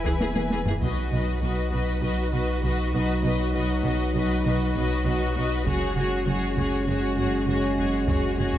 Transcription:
Already playing: sub bass E1, cello section E4, violin section B4 G#5
0.05 viola section E3, violin section G#4, taiko
0.20 viola section E3, violin section G#4, taiko high
0.36 viola section E3, violin section G#4, taiko high
0.51 viola section E3, violin section G#4, taiko high
0.66 viola section E3, violin section G#4, taiko low
0.81 sub bass B1, double bass section B1, cello section B2, french horn section F#3 D#4, viola section F#4, violin section B4 D#5, taiko
1.12 double bass section B1, cello section B2, viola section F#4, violin section B4 D#5
1.42 double bass section B1, cello section B2, viola section F#4, violin section B4 D#5
1.71 double bass section B1, cello section B2, viola section F#4, violin section B4 D#5
2.01 double bass section B1, cello section B2, viola section F#4, violin section B4 D#5
2.31 double bass section B1, cello section B2, viola section F#4, violin section B4 D#5
2.63 double bass section B1, cello section B2, viola section F#4, violin section B4 D#5
2.93 double bass section B1, cello section B2, viola section F#4, violin section B4 D#5
3.22 double bass section B1, cello section B2, viola section F#4, violin section B4 D#5
3.53 double bass section B1, cello section B2, viola section F#4, violin section B4 D#5
3.83 double bass section B1, cello section B2, viola section F#4, violin section B4 D#5
4.15 double bass section B1, cello section B2, viola section F#4, violin section B4 D#5
4.44 double bass section B1, cello section B2, viola section F#4, violin section B4 D#5
4.75 double bass section B1, cello section B2, viola section F#4, violin section B4 D#5
5.05 double bass section B1, cello section B2, viola section F#4, violin section B4 D#5
5.36 double bass section B1, cello section B2, viola section F#4, violin section B4 D#5
5.66 sub bass F#1, double bass section F#1, cello section F#2, french horn section G#3 C#4, viola section F#4, violin section G#4 C#5, taiko
5.96 double bass section F#1, cello section F#2, viola section F#4, violin section G#4 C#5
6.26 double bass section F#1, cello section F#2, viola section F#4, violin section G#4 C#5
6.56 double bass section F#1, cello section F#2, viola section F#4, violin section G#4 C#5, taiko
6.87 double bass section F#1, cello section F#2, viola section F#4, violin section G#4 C#5
7.17 double bass section F#1, cello section F#2, viola section F#4, violin section G#4 C#5
7.47 double bass section F#1, cello section F#2, viola section F#4, violin section G#4 C#5
7.78 double bass section F#1, cello section F#2, viola section F#4, violin section G#4 C#5
8.07 double bass section F#1, cello section F#2, viola section F#4, violin section G#4 C#5, taiko
8.37 double bass section F#1, cello section F#2, viola section F#4, violin section G#4 C#5
8.54 taiko

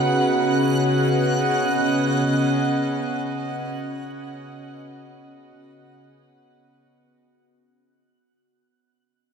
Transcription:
Already playing: string section C#3 C#4 D#4 B4 F#5, synth drone B3 F#4, synth texture F#6
0.26 string section D#5

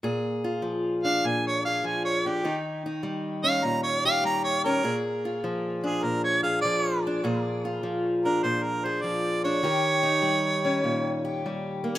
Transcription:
0.03 steel-string acoustic guitar A#2 G#4
0.44 steel-string acoustic guitar F4
0.62 steel-string acoustic guitar F3
1.03 steel-string acoustic guitar D4, harmonica F5
1.24 steel-string acoustic guitar A#2, harmonica G#5
1.47 harmonica C#5
1.65 steel-string acoustic guitar G#4, harmonica F5
1.84 steel-string acoustic guitar F3, harmonica G#5
2.05 harmonica C#5
2.26 steel-string acoustic guitar D4, harmonica G4
2.44 steel-string acoustic guitar D#3 D#4
2.86 steel-string acoustic guitar D#4
3.03 steel-string acoustic guitar G3
3.43 steel-string acoustic guitar C#4, harmonica F5
3.64 steel-string acoustic guitar A#2, harmonica A#5
3.83 harmonica C#5
4.05 steel-string acoustic guitar G4, harmonica F5
4.24 steel-string acoustic guitar G3, harmonica A#5
4.44 harmonica C#5
4.64 steel-string acoustic guitar C#4, harmonica A#4
4.83 steel-string acoustic guitar A#2 G#4
5.25 steel-string acoustic guitar F4
5.44 steel-string acoustic guitar F3
5.84 steel-string acoustic guitar D4, harmonica G#4
6.03 steel-string acoustic guitar A#2, harmonica A#4
6.24 harmonica C#5
6.43 steel-string acoustic guitar G#4, harmonica F5
6.61 steel-string acoustic guitar F3, harmonica D5
7.07 steel-string acoustic guitar D4
7.24 steel-string acoustic guitar A#2 G#4
7.65 steel-string acoustic guitar F4
7.83 steel-string acoustic guitar F3
8.25 steel-string acoustic guitar D4, harmonica A#4
8.43 steel-string acoustic guitar A#2, harmonica C5
8.63 harmonica A#4
8.84 steel-string acoustic guitar G#4, harmonica C5
9.02 steel-string acoustic guitar F3, harmonica D5
9.44 steel-string acoustic guitar D4, harmonica C#5
9.63 steel-string acoustic guitar D#3 G4
10.03 steel-string acoustic guitar D#4
10.22 steel-string acoustic guitar G3
10.65 steel-string acoustic guitar C#4
10.84 steel-string acoustic guitar A#2
11.25 steel-string acoustic guitar G4
11.46 steel-string acoustic guitar G3
11.84 steel-string acoustic guitar A#3
11.95 steel-string acoustic guitar C#4

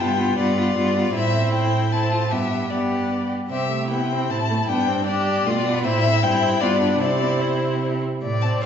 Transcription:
0.00 cello G2, viola B3, violin F4 G5
0.18 viola B3, violin F4
0.38 cello G2, viola B3, violin F4 D5
0.58 viola B3, violin F4
0.76 cello G2, viola B3, violin F4
0.96 viola B3, violin F4
1.14 cello A2, viola C4, violin E4 E5
1.54 violin G5
1.92 viola C4, violin E4 A5
2.11 violin F4
2.31 cello G2, viola B3, violin G4 E5
2.70 viola B3, violin G4 D5
3.50 cello C3, viola C4, violin G4 E5
3.72 viola A3
3.90 viola B3, violin E4 G5
4.12 viola C4
4.30 cello A2, viola C4, violin A5
4.50 viola A3
4.68 cello G2, viola B3, violin D4 G5
4.88 viola C4
5.07 viola D4, violin G4 D5
5.46 cello B2, viola A3, violin F4
5.66 viola B3
5.85 cello A2, viola C4, violin E4 E5
6.23 cello G2, viola C4, violin E4 G5
6.60 cello G2, viola B3, violin F4 D5
6.81 violin D4
7.01 cello C3, viola C4, violin E4 D5
7.42 violin C5
8.22 cello A2, violin D5
8.42 viola C4, violin A5
8.61 cello A2, violin C5 F5

